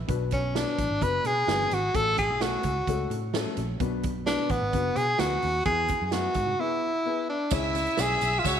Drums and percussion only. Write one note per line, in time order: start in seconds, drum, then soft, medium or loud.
0.08 kick loud
0.08 closed hi-hat medium
0.31 kick medium
0.31 closed hi-hat medium
0.31 muted conga medium
0.55 snare loud
0.55 closed hi-hat medium
0.55 high conga medium
0.78 kick medium
0.78 closed hi-hat medium
1.01 kick medium
1.01 closed hi-hat medium
1.01 muted conga soft
1.24 closed hi-hat medium
1.24 muted conga soft
1.24 low conga medium
1.47 snare loud
1.47 closed hi-hat medium
1.47 high conga medium
1.60 high conga soft
1.70 closed hi-hat medium
1.70 high conga medium
1.95 kick loud
1.95 closed hi-hat medium
2.17 kick medium
2.17 closed hi-hat medium
2.17 muted conga medium
2.41 snare loud
2.41 closed hi-hat medium
2.41 high conga medium
2.63 kick medium
2.63 closed hi-hat medium
2.87 kick medium
2.87 closed hi-hat medium
2.87 muted conga soft
3.10 closed hi-hat medium
3.10 muted conga soft
3.10 low conga medium
3.33 snare loud
3.33 closed hi-hat medium
3.33 high conga medium
3.46 high conga soft
3.57 closed hi-hat medium
3.57 high conga medium
3.80 kick loud
3.80 closed hi-hat medium
4.03 kick medium
4.03 closed hi-hat medium
4.03 muted conga soft
4.26 snare loud
4.26 closed hi-hat medium
4.26 high conga medium
4.49 kick medium
4.49 closed hi-hat medium
4.73 kick medium
4.73 closed hi-hat medium
4.73 muted conga soft
4.95 closed hi-hat medium
4.95 low conga medium
5.19 snare loud
5.19 closed hi-hat medium
5.19 high conga medium
5.31 high conga soft
5.42 open hi-hat medium
5.42 high conga medium
5.65 kick loud
5.65 closed hi-hat medium
5.88 kick medium
5.88 closed hi-hat medium
5.88 muted conga medium
6.11 snare medium
6.11 closed hi-hat medium
6.11 high conga medium
6.34 kick medium
6.34 closed hi-hat medium
6.46 low conga medium
7.51 kick loud
7.51 crash medium
7.51 tambourine medium
7.75 closed hi-hat medium
7.75 tambourine soft
7.75 muted conga soft
7.86 closed hi-hat soft
7.97 snare medium
7.97 closed hi-hat medium
7.97 tambourine loud
7.97 high conga medium
8.21 closed hi-hat medium
8.21 tambourine soft
8.44 kick medium
8.44 closed hi-hat medium
8.44 tambourine medium
8.44 muted conga medium